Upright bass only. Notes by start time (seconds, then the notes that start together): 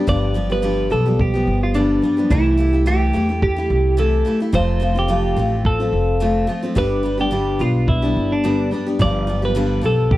0.08 G1
0.92 B1
1.47 G1
2.30 C2
3.14 E2
3.70 C2
4.53 F1
5.37 A1
5.93 F1
6.76 G1
7.60 B1
8.16 G1
9.00 G1
9.83 B1